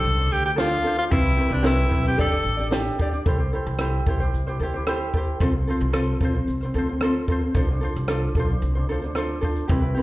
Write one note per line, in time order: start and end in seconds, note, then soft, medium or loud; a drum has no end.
0.00 0.18 D4 soft
0.00 0.34 A4 loud
0.00 0.16 C5 medium
0.05 0.31 C2 medium
0.05 shaker medium
0.17 0.56 D4 medium
0.17 0.56 C5 medium
0.17 shaker medium
0.31 0.75 D2 loud
0.31 0.45 G4 loud
0.45 0.51 G4 medium
0.45 shaker soft
0.56 0.84 D4 medium
0.56 0.85 F4 medium
0.56 0.96 F4 loud
0.56 0.83 A4 medium
0.56 0.83 C5 loud
0.56 snare loud
0.56 shaker medium
0.72 shaker medium
0.84 0.98 D4 medium
0.84 0.98 F4 medium
0.84 0.98 A4 medium
0.84 0.96 C5 medium
0.97 1.10 D4 soft
0.97 1.05 F4 medium
0.97 1.10 C5 medium
0.97 shaker medium
1.10 1.33 C2 loud
1.10 1.37 C4 medium
1.10 1.38 E4 medium
1.10 1.54 E4 medium
1.10 1.36 G4 medium
1.10 1.39 B4 medium
1.10 kick loud
1.10 shaker medium
1.25 shaker medium
1.37 1.51 C4 medium
1.37 1.50 E4 medium
1.37 1.51 G4 medium
1.37 1.48 B4 medium
1.49 1.84 C2 loud
1.49 1.63 C4 soft
1.49 1.66 D4 medium
1.49 1.63 E4 medium
1.49 1.64 B4 medium
1.49 shaker medium
1.62 1.88 C4 medium
1.62 1.90 E4 medium
1.62 2.03 E4 medium
1.62 1.88 G4 medium
1.62 1.91 B4 medium
1.62 snare loud
1.62 shaker medium
1.78 shaker soft
1.89 2.14 B1 medium
1.89 2.04 C4 medium
1.89 2.03 E4 medium
1.89 2.04 G4 medium
1.89 2.02 B4 medium
1.89 kick medium
2.03 2.17 C4 soft
2.03 2.17 E4 soft
2.03 2.17 B4 medium
2.03 shaker medium
2.08 2.19 G4 medium
2.17 2.41 G1 medium
2.17 2.32 D4 medium
2.17 2.31 G4 medium
2.17 2.31 A4 medium
2.17 2.70 A4 loud
2.17 2.29 D5 loud
2.17 kick medium
2.17 shaker medium
2.30 2.59 D4 soft
2.30 2.58 G4 medium
2.30 2.56 D5 medium
2.30 shaker medium
2.44 2.89 A1 medium
2.57 2.70 D4 soft
2.57 2.70 G4 soft
2.57 2.71 D5 soft
2.57 shaker soft
2.71 2.98 D4 medium
2.71 2.99 G4 medium
2.71 2.97 A4 medium
2.71 2.98 D5 medium
2.71 snare loud
2.71 shaker medium
2.87 shaker medium
2.98 3.13 D4 medium
2.98 3.12 G4 medium
2.98 3.01 A4 medium
2.98 3.10 D5 medium
2.98 kick medium
2.98 shaker soft
3.11 3.27 D4 soft
3.11 3.25 G4 medium
3.11 3.25 D5 medium
3.11 shaker medium
3.25 3.48 C2 loud
3.25 3.40 E4 medium
3.25 3.39 G4 medium
3.25 3.39 A4 medium
3.25 3.37 C5 medium
3.25 kick loud
3.25 shaker medium
3.39 3.52 E4 soft
3.39 3.52 G4 soft
3.39 3.52 C5 medium
3.52 3.79 E4 medium
3.52 3.80 G4 medium
3.52 3.78 A4 medium
3.52 3.80 C5 medium
3.52 shaker soft
3.67 3.99 C2 loud
3.79 4.06 E4 medium
3.79 4.07 G4 loud
3.79 4.05 A4 medium
3.79 4.06 C5 medium
3.79 cross-stick loud
3.79 shaker medium
4.07 4.29 B1 medium
4.07 4.20 E4 medium
4.07 4.20 G4 medium
4.07 4.10 A4 medium
4.07 4.19 C5 medium
4.07 kick medium
4.07 shaker soft
4.20 4.48 E4 soft
4.20 4.47 G4 medium
4.20 4.46 C5 medium
4.20 shaker soft
4.34 4.55 C2 medium
4.34 shaker medium
4.47 4.61 E4 soft
4.47 4.61 G4 medium
4.47 4.60 C5 medium
4.47 cross-stick soft
4.59 5.04 D2 medium
4.59 4.74 E4 medium
4.59 4.75 G4 medium
4.59 4.64 A4 medium
4.59 shaker medium
4.64 4.73 C5 medium
4.74 4.86 E4 soft
4.74 4.86 G4 medium
4.74 4.87 C5 soft
4.87 5.14 E4 loud
4.87 5.14 G4 medium
4.87 5.13 A4 medium
4.87 5.14 C5 loud
4.87 cross-stick loud
4.87 shaker medium
5.13 5.41 E4 medium
5.13 5.17 A4 medium
5.13 kick medium
5.13 shaker soft
5.17 5.40 G4 medium
5.17 5.42 C5 medium
5.40 5.63 C2 loud
5.40 5.54 C4 medium
5.40 5.54 F4 medium
5.40 5.53 A4 medium
5.40 5.52 C5 medium
5.40 kick loud
5.40 shaker medium
5.53 5.67 C5 medium
5.67 5.92 C4 medium
5.67 5.93 F4 medium
5.67 5.92 A4 medium
5.67 5.93 C5 medium
5.67 shaker soft
5.81 6.14 C2 loud
5.93 6.21 C4 medium
5.93 6.21 F4 loud
5.93 6.19 A4 medium
5.93 6.20 C5 medium
5.93 cross-stick loud
5.93 shaker medium
6.20 6.43 B1 medium
6.20 6.35 C4 medium
6.20 6.35 F4 medium
6.20 6.34 A4 medium
6.20 kick medium
6.20 shaker soft
6.24 6.33 C5 medium
6.34 6.63 C4 soft
6.34 6.61 C5 medium
6.48 6.70 C2 medium
6.48 shaker medium
6.61 6.75 C5 medium
6.61 cross-stick soft
6.66 6.75 C4 soft
6.74 7.18 D2 medium
6.74 6.89 C4 medium
6.74 6.89 F4 medium
6.74 6.88 A4 medium
6.74 shaker medium
6.78 6.88 C5 medium
6.89 7.02 C4 soft
6.89 6.92 F4 soft
6.89 7.02 C5 medium
7.01 7.28 C4 medium
7.01 7.29 F4 medium
7.01 7.27 A4 medium
7.01 7.28 C5 medium
7.01 cross-stick loud
7.01 shaker medium
7.27 7.42 C4 medium
7.27 7.42 F4 medium
7.27 7.42 A4 medium
7.27 kick medium
7.27 shaker soft
7.32 7.40 C5 medium
7.42 7.55 C4 soft
7.42 7.54 C5 medium
7.54 7.77 C2 loud
7.54 7.68 D4 medium
7.54 7.69 F4 medium
7.54 7.68 A4 medium
7.54 7.67 C5 medium
7.54 kick loud
7.54 shaker medium
7.68 7.81 D4 medium
7.68 7.82 C5 medium
7.81 8.08 D4 medium
7.81 8.09 F4 medium
7.81 8.07 A4 medium
7.81 8.08 C5 medium
7.81 shaker soft
7.96 8.29 C2 loud
7.96 shaker medium
8.08 8.36 D4 medium
8.08 8.36 F4 medium
8.08 8.35 A4 medium
8.08 8.36 C5 medium
8.08 cross-stick loud
8.08 shaker medium
8.34 8.57 B1 medium
8.34 8.50 D4 medium
8.34 8.49 A4 medium
8.34 kick medium
8.34 shaker soft
8.39 8.49 F4 medium
8.39 8.47 C5 medium
8.49 8.76 D4 soft
8.49 8.74 C5 medium
8.62 8.89 C2 medium
8.62 shaker medium
8.75 8.88 D4 medium
8.75 8.78 F4 medium
8.75 8.88 C5 medium
8.89 9.33 D2 medium
8.89 9.02 D4 medium
8.89 9.02 F4 medium
8.89 9.01 A4 medium
8.89 9.00 C5 medium
8.89 shaker soft
9.01 9.15 D4 soft
9.01 9.15 C5 medium
9.01 shaker soft
9.15 9.41 D4 medium
9.15 9.43 F4 medium
9.15 9.40 A4 medium
9.15 9.41 C5 medium
9.15 cross-stick loud
9.15 shaker medium
9.41 9.69 D4 medium
9.41 9.70 F4 medium
9.41 9.69 A4 medium
9.41 9.67 C5 medium
9.41 kick medium
9.41 shaker soft
9.56 shaker medium
9.68 9.91 C2 loud
9.68 9.83 C4 medium
9.68 9.82 E4 medium
9.68 9.82 G4 medium
9.68 9.80 B4 medium
9.68 kick loud
9.68 shaker medium
9.81 9.95 C4 soft
9.81 9.96 E4 medium
9.81 9.95 B4 medium
9.95 10.03 C4 medium
9.95 10.03 E4 medium
9.95 10.03 G4 medium
9.95 10.03 B4 medium
9.95 shaker soft